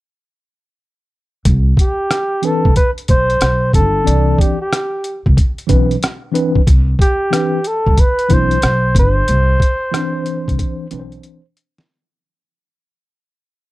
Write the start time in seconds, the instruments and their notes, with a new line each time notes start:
1.45 upright bass C2, kick, closed hi-hat
1.77 flugelhorn G4, kick, closed hi-hat
2.11 cross-stick, closed hi-hat
2.42 tine electric piano E3 C4 D4 B4, flugelhorn A4, closed hi-hat
2.65 upright bass C2, kick
2.76 flugelhorn B4, kick, closed hi-hat
2.98 closed hi-hat
3.08 upright bass B1, flugelhorn C5, kick, closed hi-hat
3.30 closed hi-hat
3.41 upright bass B1, cross-stick, closed hi-hat
3.73 upright bass G1, flugelhorn A4, kick, closed hi-hat
4.04 upright bass C2, tine electric piano E3 C4 D4 D5, closed hi-hat
4.38 flugelhorn G4, kick, closed hi-hat
4.62 flugelhorn G4
4.73 cross-stick, closed hi-hat
5.04 closed hi-hat
5.26 upright bass C2, kick
5.37 kick, closed hi-hat
5.58 closed hi-hat
5.67 upright bass B1, tine electric piano E3 C4 D4 B4, kick, closed hi-hat
5.91 closed hi-hat
6.03 cross-stick, closed hi-hat
6.32 tine electric piano E3 C4 D4 B4, closed hi-hat
6.55 kick
6.67 upright bass C2, kick, closed hi-hat
6.99 flugelhorn G4, kick, closed hi-hat
7.30 tine electric piano E3 C4 D4 B4, cross-stick, closed hi-hat
7.64 flugelhorn A4, closed hi-hat
7.87 upright bass C2, kick
7.98 flugelhorn B4, kick, closed hi-hat
8.19 closed hi-hat
8.28 upright bass B1, tine electric piano E3 C4 D4 E4, kick, closed hi-hat
8.33 flugelhorn C5
8.51 closed hi-hat
8.62 upright bass B1, cross-stick, closed hi-hat
8.95 upright bass G1, kick, closed hi-hat
8.99 flugelhorn C5
9.28 upright bass C2, closed hi-hat
9.60 kick, closed hi-hat
9.91 tine electric piano E3 C4 D4 C5, cross-stick, closed hi-hat
10.26 closed hi-hat
10.48 upright bass C2, kick, closed hi-hat
10.59 kick, closed hi-hat
10.91 upright bass B1, tine electric piano E3 C4 D4 B4, closed hi-hat
11.00 tine electric piano C5
11.12 closed hi-hat
11.23 closed hi-hat
11.57 closed hi-hat
11.78 snare